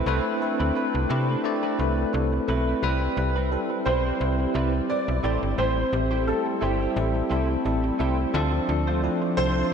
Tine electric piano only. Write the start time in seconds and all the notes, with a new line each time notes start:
Already playing: A3 C4 E4 A4 B4 C5
0.07 A3 C4 E4 B4
0.41 A3 C4 E4 A4
0.76 A3 C4 E4 B4
1.10 A3 C4 E4 G4
1.44 A3 C4 E4 D5
1.79 A3 C4 E4 B4
2.13 A3 C4 E4 A4
2.47 A3 C4 E4 B4
2.82 G3 C4 E4 B4
3.17 G3 C4 E4 B4
3.51 G3 C4 E4 A4
3.86 G3 C4 E4 D5
4.20 G3 C4 E4 C5
4.54 G3 C4 E4 D5
4.89 G3 C4 E4 B4
5.23 G3 C4 E4 A4
5.93 G3 C4 E4 G4
6.27 G3 C4 E4 A4
6.61 G3 C4 E4 C5
6.96 G3 C4 E4 A4
7.30 G3 C4 E4 A4
7.65 G3 C4 E4 A4
8.00 G3 C4 E4 A4
8.34 F3 C4 D4 A4
8.69 F3 C4 D4 A4
9.03 F3 C4 D4 E4
9.37 F3 C4 D4 A4